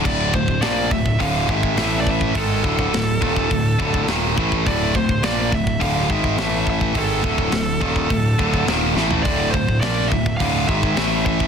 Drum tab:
CC |x---------------|----------------|----------------|----------------|
HH |----o---o---o---|o---o---o---o---|o---o---o---o---|o---o---o---o---|
SD |----o-------o---|----o-------o---|----o-------o---|----o-------o-o-|
FT |----------------|----------------|----------------|---------------o|
BD |o-oo--ooo-oo--oo|o-oo--ooo-oo--oo|o-oo--ooo-oo--oo|o-oo--ooo-oo----|

CC |----------------|
HH |o---o---o---o---|
SD |----o-------o---|
FT |----------------|
BD |o-oo--ooo-oo--oo|